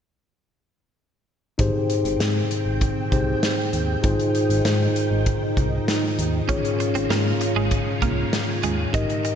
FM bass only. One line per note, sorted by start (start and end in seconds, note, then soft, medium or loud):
1.59 1.71 G#1 loud
2.05 2.16 G#1 medium
2.20 2.43 G#2 medium
2.66 2.89 G#1 medium
3.12 3.35 C2 medium
3.73 3.96 D#2 medium
4.04 4.16 G#1 loud
4.50 4.61 G#1 medium
4.65 4.88 G#2 medium
5.11 5.34 G#1 medium
5.57 5.80 C2 medium
6.19 6.42 D#2 medium
6.49 6.61 G#1 loud
6.95 7.07 G#1 medium
7.10 7.33 G#2 medium
7.56 7.79 G#1 medium
8.02 8.25 C2 medium
8.64 8.87 D#2 medium
8.94 9.05 G#1 loud